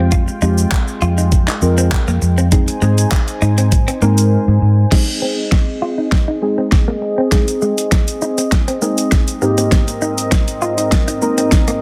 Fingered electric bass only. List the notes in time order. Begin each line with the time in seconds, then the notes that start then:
Already playing: F2
0.42 F2
1.02 F2
1.62 F2
2.08 F2
2.22 F2
2.82 G#2
3.42 G#2
4.02 G#2
4.48 G#2
4.62 G#2